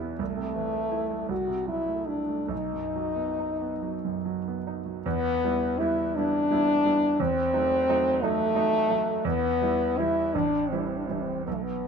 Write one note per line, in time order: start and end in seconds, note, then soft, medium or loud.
0.00 0.16 E2 medium
0.00 0.22 B2 soft
0.00 0.22 E3 soft
0.00 0.02 B3 medium
0.00 0.20 B3 soft
0.00 0.12 E4 medium
0.19 1.27 C2 medium
0.19 1.26 A3 medium
0.37 0.66 C3 soft
0.56 0.85 E3 soft
0.74 1.04 A3 soft
0.91 1.22 E4 medium
1.11 1.30 A3 soft
1.29 2.47 C2 soft
1.29 1.68 F#4 medium
1.47 1.80 C3 soft
1.68 2.00 F#3 soft
1.68 2.09 E4 medium
1.88 2.21 A3 soft
2.07 2.50 D4 medium
2.07 2.42 E4 soft
2.29 2.50 A3 soft
2.49 5.00 B1 medium
2.49 4.61 D#4 medium
2.73 3.08 F#2 soft
2.96 3.30 F#3 soft
3.16 3.50 B3 soft
3.39 3.72 D#4 soft
3.62 3.94 B3 soft
3.83 4.15 F#3 soft
4.05 4.37 F#2 soft
4.25 4.58 F#3 soft
4.48 4.80 B3 soft
4.67 4.98 D#4 soft
4.86 5.05 F#3 soft
5.06 5.41 E2 medium
5.06 5.81 B3 loud
5.44 5.77 G3 soft
5.44 5.77 B3 soft
5.44 5.77 E4 medium
5.79 6.12 G3 medium
5.79 6.13 B3 medium
5.79 6.18 E4 medium
5.79 6.13 E4 medium
6.16 6.49 G3 soft
6.16 6.49 B3 soft
6.16 7.22 D4 loud
6.16 6.49 E4 medium
6.51 6.82 G3 medium
6.51 6.82 B3 medium
6.51 6.82 E4 medium
6.85 7.16 G3 soft
6.85 7.16 B3 medium
6.85 7.16 E4 medium
7.20 7.52 E2 medium
7.20 8.24 C4 loud
7.53 7.84 F#3 soft
7.53 7.85 A3 medium
7.53 7.85 D#4 medium
7.89 8.19 F#3 medium
7.89 8.19 A3 medium
7.89 8.20 D#4 medium
8.23 8.53 F#3 medium
8.23 9.25 A3 loud
8.23 8.53 A3 medium
8.23 8.53 D#4 medium
8.55 8.86 F#3 medium
8.55 8.86 A3 medium
8.55 8.86 D#4 medium
8.90 9.21 F#3 medium
8.90 9.21 A3 medium
8.90 9.21 D#4 medium
9.25 9.60 E2 medium
9.25 10.00 B3 loud
9.61 9.94 E3 soft
9.61 9.94 G3 soft
9.61 9.94 E4 medium
9.98 10.31 E3 medium
9.98 10.31 G3 medium
9.98 10.35 E4 loud
9.98 10.32 E4 medium
10.34 10.70 A1 medium
10.34 10.71 D4 medium
10.69 11.05 E3 soft
10.69 11.05 G3 soft
10.69 10.81 C4 medium
10.69 11.05 E4 medium
10.79 10.88 D4 medium
10.86 10.99 C4 medium
10.97 11.07 D4 medium
11.05 11.43 E3 soft
11.05 11.43 G3 soft
11.05 11.14 C4 medium
11.10 11.22 D4 medium
11.10 11.44 E4 soft
11.21 11.46 C4 medium
11.46 11.85 B1 medium
11.46 11.55 B3 medium
11.54 11.64 A3 medium
11.62 11.88 B3 medium